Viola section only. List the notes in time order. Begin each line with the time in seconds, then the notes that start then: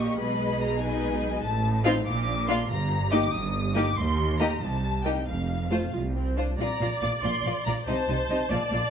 Already playing: A#3 G4
0.18 G#3 G#4
0.81 G#3 D#4
1.85 C4 D#4
2.49 A#3 D4
3.11 A#3 D#4
3.75 A#3 D#4
4.39 A#3 D#4
5.04 A#3 D#4
5.70 A3 F4
5.92 F4
6.15 C4
6.36 D4
6.58 D5
7.86 C5
8.50 D5